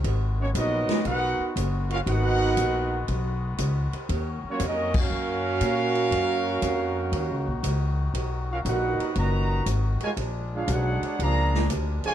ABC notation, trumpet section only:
X:1
M:4/4
L:1/8
Q:"Swing" 1/4=118
K:Ebm
V:1 name="Trumpet section"
z [B,EGd] [CGBe]2 [EBcg]2 z [DGBf] | [EBcg]4 z4 | z [B,FGd] [DGBe] [DGBf]4- [DGBf]- | [DGBf]6 z2 |
z [D^F^A=f] [^DA=B^f]2 [FB^d^a]2 z [=FA_d_a] | z [=DA^cf] [DAcg]2 [A=dfb]2 z [Fcda] |]